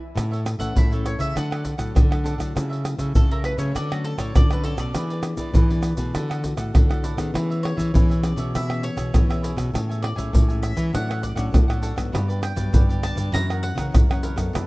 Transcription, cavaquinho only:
0.15 E4 A4 C#5 E5
0.31 A4 C#5 E5
0.45 muted cavaquinho stroke
0.59 A4 C#5 E5
0.76 E4 A4 C#5 E5
0.92 A4 C#5 E5
1.19 A4 C#5 E5
1.35 D4 A4 D5 F#5
1.51 A4 D5 F#5
1.65 muted cavaquinho stroke
1.78 A4 D5 F#5
2.11 A4 D5 F#5
2.24 D4 A4 D5 F#5
2.38 A4 D5 F#5
2.55 F#4 A4 C#5 E5
2.70 A4 C#5 E5
2.84 muted cavaquinho stroke
2.99 A4 C#5 E5
3.15 F#4 A4 C#5 E5
3.31 A4 C#5 E5
3.58 A4 C#5 E5
3.74 F#4 A4 C#5 D5
3.90 A4 C#5 D5
4.04 muted cavaquinho stroke
4.18 A4 C#5 D5
4.50 A4 C#5 D5
4.64 F#4 A4 C#5 D5
4.78 A4 C#5 D5
4.96 E4 G#4 B4 D5
5.11 G#4 B4 D5
5.24 muted cavaquinho stroke
5.38 G#4 B4 D5
5.55 E4 G#4 B4 D5
5.70 G#4 B4 D5
5.98 G#4 B4 D5
6.13 E4 A4 D5 F#5
6.30 A4 D5 F#5
6.43 muted cavaquinho stroke
6.57 A4 D5 F#5
6.89 A4 D5 F#5
7.04 E4 A4 D5 F#5
7.18 A4 D5 F#5
7.35 E4 G#4 C#5 E5
7.50 G#4 C#5 E5
7.63 muted cavaquinho stroke
7.77 G#4 C#5 E5
7.94 E4 G#4 C#5 E5
8.10 G#4 C#5 E5
8.38 G#4 C#5 E5
8.55 E4 G#4 C#5 E5
8.70 G#4 C#5 E5
8.83 muted cavaquinho stroke
8.97 G#4 C#5 E5
9.30 G#4 C#5 E5
9.42 E4 G#4 C#5 E5
9.58 G#4 C#5 E5
9.74 A4 C#5 E5 G#5
9.89 C#5 E5 G#5
10.02 muted cavaquinho stroke
10.16 C#5 E5 G#5
10.32 A4 C#5 E5 G#5
10.48 C#5 E5 G#5
10.77 C#5 E5 G#5
10.93 D4 A4 C#5 F#5
11.09 A4 C#5 F#5
11.22 muted cavaquinho stroke
11.36 A4 C#5 F#5
11.68 A4 C#5 F#5
11.82 D4 A4 C#5 F#5
11.96 A4 C#5 F#5
12.12 F#4 G4 B4 D5
12.28 G4 B4 D5
12.42 muted cavaquinho stroke
12.56 G4 B4 D5
12.73 F#4 G4 B4 D5
12.89 G4 B4 D5
13.17 G4 B4 D5
13.33 E4 A#4 C#5 F#5
13.50 A#4 C#5 F#5
13.64 muted cavaquinho stroke
13.78 A#4 C#5 F#5
14.11 A#4 C#5 F#5
14.23 E4 A#4 C#5 F#5
14.37 A#4 C#5 F#5
14.53 D4 A4 B4 D5

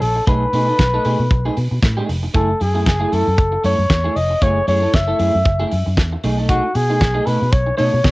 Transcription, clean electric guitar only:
0.02 muted clean electric guitar stroke
0.16 muted clean electric guitar stroke
0.27 A3 D#4 G#4
0.53 A3 D#4 G#4
0.68 A3 D#4 A4
0.79 muted clean electric guitar stroke
0.94 A3 D#4 A4
1.05 A3 D#4 G#4
1.19 muted clean electric guitar stroke
1.31 muted clean electric guitar stroke
1.45 A3 D#4 G#4
1.57 muted clean electric guitar stroke
1.71 muted clean electric guitar stroke
1.83 muted clean electric guitar stroke
1.97 A3 D#4 G#4
2.09 muted clean electric guitar stroke
2.23 muted clean electric guitar stroke
2.34 A3 E4 G#4
2.49 muted clean electric guitar stroke
2.60 muted clean electric guitar stroke
2.74 A3 E4 G#4
2.86 muted clean electric guitar stroke
3.00 A3 E4 G#4
3.12 A3 E4 A4
3.27 muted clean electric guitar stroke
3.38 muted clean electric guitar stroke
3.52 muted clean electric guitar stroke
3.64 A3 E4 A4
3.79 muted clean electric guitar stroke
3.90 muted clean electric guitar stroke
4.04 A3 E4 G#4
4.16 muted clean electric guitar stroke
4.30 muted clean electric guitar stroke
4.42 A3 E4 G#4
4.67 A3 E4 G#4
4.82 A3 E4 A4
4.93 muted clean electric guitar stroke
5.08 A3 E4 A4
5.19 A3 E4 G#4
5.34 muted clean electric guitar stroke
5.45 muted clean electric guitar stroke
5.60 A3 E4 G#4
5.72 muted clean electric guitar stroke
5.86 muted clean electric guitar stroke
5.98 muted clean electric guitar stroke
6.13 muted clean electric guitar stroke
6.24 A3 D#4 G#4
6.38 A3 D#4 A4
6.49 A3 D#4 G#4
6.64 muted clean electric guitar stroke
6.75 muted clean electric guitar stroke
6.90 A3 D#4 G#4
7.01 muted clean electric guitar stroke
7.14 A3 D#4 G#4
7.26 A3 D#4 A4
7.41 muted clean electric guitar stroke
7.52 muted clean electric guitar stroke
7.67 muted clean electric guitar stroke
7.77 A3 D#4 A4
7.93 muted clean electric guitar stroke
8.04 muted clean electric guitar stroke

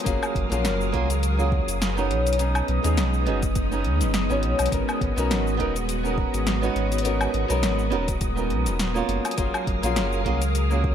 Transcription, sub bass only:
0.06 F#1
0.35 F#1
0.51 A#1
0.65 F#1
0.94 C#2
1.68 F#1
2.10 B1
2.68 B1
2.84 D#2
2.97 B1
3.26 F#1
3.85 D#2
4.01 F#1
4.31 G#1
4.44 B1
4.59 B1
4.72 G#1
5.01 G#1
5.17 B1
5.30 G#1
5.59 D#1
6.34 G#1
6.75 G#1
7.34 G#1
7.50 B1
7.62 G#1
7.91 D#1
8.50 B1
8.66 D#1
9.08 F#1
9.38 F#1
9.67 F#1
9.83 A#1
9.96 F#1
10.26 C#2

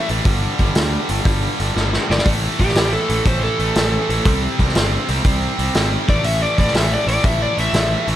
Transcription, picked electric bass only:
0.10 A1
0.25 G1
0.59 G1
0.75 D2
1.09 G1
1.25 G1
1.60 G1
1.76 G1
2.10 G1
2.26 A1
2.60 A1
2.75 A1
3.09 A1
3.25 A1
3.59 A1
3.76 A1
4.09 A1
4.26 C2
4.59 C2
4.76 G1
5.09 C2
5.25 C2
5.59 C2
5.75 G#1
6.09 A1
6.24 A1
6.59 A1
6.74 A1
7.07 A1
7.24 A1
7.58 A1
7.73 A1
8.08 A1

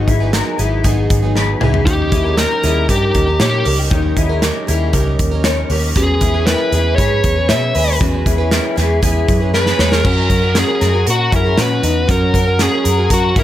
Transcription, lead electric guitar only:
1.86 G4
2.38 A#4
2.90 G4
3.42 G4
5.97 G#4
6.46 B4
6.96 C#5
7.49 E5
9.55 B4
9.93 A#4
10.06 A#4
10.59 G#4
11.10 F#4
11.36 A#4
11.62 B4
12.11 A#4
12.62 G#4
13.14 F#4
13.39 A#4

